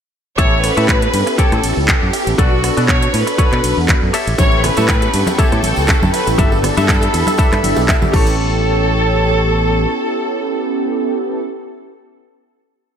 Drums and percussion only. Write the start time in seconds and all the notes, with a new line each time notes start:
0.38 kick, closed hi-hat
0.64 cross-stick, open hi-hat, ride
0.77 closed hi-hat
0.88 kick, clap, closed hi-hat
1.02 closed hi-hat
1.14 open hi-hat, ride
1.27 closed hi-hat
1.38 kick, closed hi-hat
1.52 cross-stick, closed hi-hat
1.64 open hi-hat, ride
1.88 kick, clap, closed hi-hat
2.13 open hi-hat, ride
2.27 closed hi-hat
2.38 kick, closed hi-hat
2.64 cross-stick, open hi-hat, ride
2.77 closed hi-hat
2.88 kick, clap, closed hi-hat
3.02 closed hi-hat
3.14 open hi-hat, ride
3.27 closed hi-hat
3.38 kick, closed hi-hat
3.52 cross-stick, clap, closed hi-hat
3.64 open hi-hat, ride
3.88 kick, clap, closed hi-hat
4.14 open hi-hat, ride
4.27 closed hi-hat
4.38 kick, closed hi-hat, tambourine, high bongo, high conga
4.52 tambourine
4.64 cross-stick, open hi-hat, ride, high bongo, low conga
4.77 closed hi-hat, tambourine, high conga
4.88 kick, clap, closed hi-hat, tambourine
5.02 closed hi-hat, tambourine, high bongo
5.14 open hi-hat, ride
5.27 closed hi-hat, tambourine, high bongo, high conga
5.38 kick, closed hi-hat, tambourine
5.52 cross-stick, closed hi-hat, tambourine
5.63 open hi-hat, ride, high bongo, high conga
5.76 tambourine
5.87 kick, clap, closed hi-hat, tambourine, high bongo
6.02 tambourine, high conga, low conga
6.14 open hi-hat, ride
6.27 closed hi-hat, tambourine, high bongo
6.38 kick, closed hi-hat, tambourine, high conga
6.52 tambourine, high bongo
6.63 cross-stick, open hi-hat, ride, low conga
6.77 closed hi-hat, tambourine, high conga
6.88 kick, clap, closed hi-hat, tambourine, high bongo
7.02 closed hi-hat, tambourine
7.14 open hi-hat, ride, high bongo
7.27 closed hi-hat, tambourine, high conga
7.37 kick, closed hi-hat, tambourine
7.52 cross-stick, clap, closed hi-hat, tambourine, high bongo
7.64 open hi-hat, ride, high conga
7.76 tambourine, high bongo
7.88 kick, clap, closed hi-hat, tambourine
8.02 tambourine, high conga, low conga
8.14 kick, crash, high bongo
8.27 tambourine